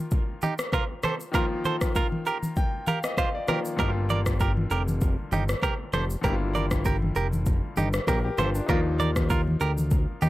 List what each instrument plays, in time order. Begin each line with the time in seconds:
Already playing: grand piano D#3 F3 A#3 F4
0.11 kick, low conga, shaker
0.42 clean electric guitar D#4 G4, high conga, shaker
0.59 cross-stick, shaker
0.73 clean electric guitar F4 A#4, kick, cross-stick, low conga, shaker
1.03 clean electric guitar A4 C5, cross-stick, high conga, low conga, shaker
1.20 shaker
1.32 grand piano D#3 F3 A#3, clean electric guitar F4 A#4, kick, cross-stick, shaker
1.37 grand piano F4
1.65 clean electric guitar A4 C5, high conga, shaker
1.81 kick, cross-stick, shaker
1.95 clean electric guitar F4 A#4, kick, low conga, shaker
2.12 high conga
2.26 clean electric guitar G4 A#4, grand piano A#5, shaker
2.43 high conga, shaker
2.56 grand piano G5, kick, low conga, shaker
2.87 clean electric guitar G4 A#4, grand piano F5, high conga, shaker
3.03 grand piano D#5, cross-stick, shaker
3.18 clean electric guitar F4 C5, grand piano F5, kick, cross-stick, low conga, shaker
3.35 grand piano D5
3.47 grand piano D#3 F3 A#3 F4, clean electric guitar G4 A#4, cross-stick, high conga, low conga, shaker
3.65 shaker
3.77 analog synth bass G1, grand piano D3 G3 A#3, clean electric guitar G4 A#4, kick, cross-stick, shaker
3.81 grand piano D#4
3.88 grand piano F4
4.10 clean electric guitar A#4 D5, high conga, shaker
4.26 kick, cross-stick, shaker
4.40 clean electric guitar G4 A#4, kick, low conga, shaker
4.57 high conga
4.71 analog synth bass F1, clean electric guitar G4 A#4, shaker
4.88 high conga, shaker
5.01 kick, low conga, shaker
5.32 analog synth bass G1, clean electric guitar D#4 G4, high conga, shaker
5.49 cross-stick, shaker
5.63 clean electric guitar G4 A#4, kick, cross-stick, low conga, shaker
5.93 analog synth bass F1, clean electric guitar A4 C5, cross-stick, high conga, low conga, shaker
6.10 shaker
6.21 analog synth bass G1, grand piano D3 G3 A#3, clean electric guitar G4 A#4, kick, cross-stick, shaker
6.26 grand piano E4
6.33 grand piano F4
6.55 clean electric guitar A#4 D5, high conga, shaker
6.71 kick, cross-stick, shaker
6.85 clean electric guitar G4 A#4, kick, low conga, shaker
7.02 high conga
7.16 analog synth bass F1, clean electric guitar G4 A#4, shaker
7.33 high conga, shaker
7.46 kick, low conga, shaker
7.77 analog synth bass G1, clean electric guitar D#4 G4, high conga, shaker
7.93 cross-stick, shaker
8.07 analog synth bass A#1, clean electric guitar G4 A#4, grand piano A#4, kick, cross-stick, low conga, shaker
8.24 grand piano G4
8.38 analog synth bass G1, grand piano F4, clean electric guitar A4 C5, cross-stick, high conga, low conga, shaker
8.55 grand piano D4, shaker
8.66 analog synth bass D#2, grand piano F3 A#3 D#4, clean electric guitar F4 A#4, kick, cross-stick, shaker
8.71 grand piano F4
9.00 clean electric guitar A#4 D5, high conga, shaker
9.16 kick, cross-stick, shaker
9.30 clean electric guitar F4 A#4, kick, low conga, shaker
9.47 high conga
9.61 analog synth bass D2, clean electric guitar G4 A#4, shaker
9.78 high conga, shaker
9.91 kick, low conga, shaker
10.22 analog synth bass D#2, clean electric guitar D#4 G4, high conga, shaker